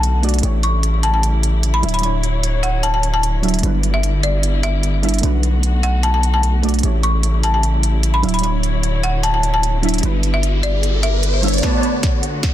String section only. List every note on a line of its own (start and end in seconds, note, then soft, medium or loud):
0.00 0.42 D3 medium
0.00 1.80 A3 medium
0.00 0.42 B3 medium
0.00 0.42 F#4 medium
0.43 1.82 C#3 medium
0.43 1.82 G3 medium
0.43 3.60 E4 medium
1.83 6.79 D3 medium
1.83 3.62 F#3 medium
1.83 3.62 C#5 medium
3.63 5.22 G3 medium
3.63 6.80 B3 medium
3.63 5.22 E4 medium
5.23 8.20 A3 medium
5.23 6.82 F#4 medium
6.83 8.22 C#3 medium
6.83 8.22 G3 medium
6.83 11.59 E4 medium
8.23 10.02 D3 medium
8.23 10.02 F#3 medium
8.23 10.02 C#5 medium
10.03 11.62 D3 medium
10.03 11.62 G3 medium
10.03 11.62 B3 medium
11.63 12.54 D3 medium
11.63 12.54 A3 medium
11.63 12.54 B3 medium
11.63 12.54 F#4 medium